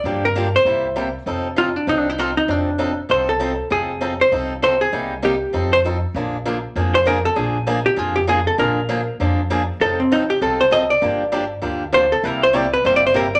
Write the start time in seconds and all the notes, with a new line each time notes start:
Already playing: D5
0.04 G2 D3 F3 A#3 D4 G4
0.25 A#4
0.35 D3 F3 A#3 D4 G4
0.56 C5
0.65 C2 C3 G3 A#3 E4 G4
0.96 C3 G3 A#3 E4 G4
1.26 F1 F3 C4 D#4 A4
1.56 F3 C4 D#4 F4 A4
1.76 D4
1.87 C2 F3 C4 D#4 A4
1.99 D4
2.10 D#4
2.18 F3 C4 D#4 F4 A4
2.37 D#4
2.48 F1 F3 C4 D4 D#4 A4
2.78 F3 C4 D#4 A4
3.09 C2 F3 C4 D#4 A4 C5
3.29 A4
3.40 F3 C4 D#4 A4
3.70 F1 F3 C4 D#4 G#4 A4
4.01 F3 C4 D#4 A4
4.21 C5
4.32 C2 F3 C4 D#4 A4
4.62 F3 C4 D#4 A4 C5
4.81 G#4
4.92 C2 C3 G3 A#3 D#4 G4
5.22 C3 G3 A#3 D#4 G4
5.53 F2 F3 C4 D#4 A4
5.73 C5
5.84 F3 C4 D#4 A4
6.14 A#1 D3 F3 A#3 D4 G#4
6.46 D3 F3 A#3 D4 G#4
6.76 F2 D3 F3 A#3 D4 G#4
6.95 C5
7.05 D3 F3 A#3 D4 G#4 A#4
7.25 A4
7.36 A#1 D3 F3 A#3 D4 G#4
7.67 D3 F3 A#3 D4 G#4
7.86 G4
7.96 F2 D3 F3 A#3 D4 F4 G#4
8.16 G4
8.27 D3 F3 A#3 D4 G#4
8.47 A4
8.58 A#1 D3 F3 A#3 D4 G#4 A#4
8.89 D3 F3 A#3 D4 G#4
9.20 F2 D3 F3 A#3 D4 G#4
9.50 D3 F3 A#3 D4 G#4
9.80 F1 F3 C4 D#4 A4
10.00 C4
10.12 F3 C4 D#4 A4
10.30 G4
10.41 C2 F3 C4 D#4 A4
10.61 C5
10.71 F3 C4 D#4 A4 D#5
10.90 D5
11.02 G1 D3 F3 A#3 D4 G4
11.32 D3 F3 A#3 D4 G4
11.62 D2 D3 F3 A#3 D4 G4
11.92 D3 F3 A#3 D4 G4 C5
12.12 A4
12.23 C2 C3 G3 A#3 E4 G4 A#4
12.43 C5
12.53 C3 G3 A#3 E4 G4 D5
12.73 B4
12.84 G1 C3 G3 A#3 E4 G4 C5
12.96 D5
13.07 C5
13.14 C3 G3 A#3 E4 G4 A#4
13.35 D5